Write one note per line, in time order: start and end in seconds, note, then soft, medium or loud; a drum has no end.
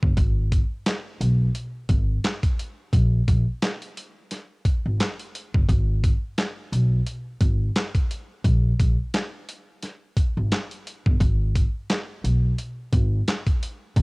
0.03 0.14 G1 medium
0.03 kick loud
0.17 0.59 G#1 loud
0.17 kick loud
0.17 closed hi-hat medium
0.52 kick loud
0.52 closed hi-hat medium
0.86 snare loud
0.86 clap medium
0.86 closed hi-hat loud
1.21 1.47 B1 medium
1.21 closed hi-hat medium
1.55 closed hi-hat medium
1.89 2.16 G#1 medium
1.89 kick medium
1.89 closed hi-hat medium
2.24 snare loud
2.24 clap medium
2.24 closed hi-hat medium
2.43 kick medium
2.43 closed hi-hat medium
2.59 closed hi-hat medium
2.93 3.19 A#1 loud
2.93 kick loud
2.93 closed hi-hat medium
3.28 3.43 A#1 medium
3.28 kick loud
3.28 closed hi-hat medium
3.62 snare loud
3.62 clap medium
3.62 closed hi-hat loud
3.82 closed hi-hat soft
3.97 closed hi-hat medium
4.31 snare soft
4.31 closed hi-hat medium
4.65 kick medium
4.65 closed hi-hat medium
4.86 4.96 G#1 medium
5.00 snare loud
5.00 clap medium
5.00 closed hi-hat medium
5.19 closed hi-hat medium
5.35 closed hi-hat medium
5.54 5.65 G1 medium
5.54 kick loud
5.69 6.10 G#1 loud
5.69 kick loud
5.69 closed hi-hat medium
6.04 kick loud
6.04 closed hi-hat medium
6.38 snare loud
6.38 clap medium
6.38 closed hi-hat medium
6.72 6.98 B1 medium
6.72 closed hi-hat medium
7.06 closed hi-hat medium
7.41 7.67 G#1 medium
7.41 kick medium
7.41 closed hi-hat medium
7.76 snare loud
7.76 clap medium
7.76 closed hi-hat medium
7.95 kick medium
7.95 closed hi-hat medium
8.11 closed hi-hat medium
8.44 8.71 A#1 loud
8.44 kick loud
8.44 closed hi-hat medium
8.80 8.95 A#1 medium
8.80 kick medium
8.80 closed hi-hat medium
9.14 snare loud
9.14 clap medium
9.14 closed hi-hat medium
9.49 closed hi-hat medium
9.83 snare soft
9.83 closed hi-hat medium
10.17 kick medium
10.17 closed hi-hat medium
10.37 10.48 G#1 medium
10.52 snare loud
10.52 clap medium
10.52 closed hi-hat medium
10.71 closed hi-hat medium
10.87 closed hi-hat medium
11.06 11.17 G1 medium
11.06 kick loud
11.20 11.62 G#1 loud
11.20 kick loud
11.20 closed hi-hat medium
11.56 kick loud
11.56 closed hi-hat medium
11.90 snare loud
11.90 clap medium
11.90 closed hi-hat loud
12.24 12.50 B1 medium
12.24 closed hi-hat medium
12.58 closed hi-hat medium
12.93 13.19 G#1 loud
12.93 kick medium
12.93 closed hi-hat medium
13.28 snare loud
13.28 clap loud
13.28 closed hi-hat medium
13.47 kick medium
13.47 closed hi-hat medium
13.63 closed hi-hat medium
13.96 14.02 A#1 loud
13.96 kick loud
13.96 closed hi-hat medium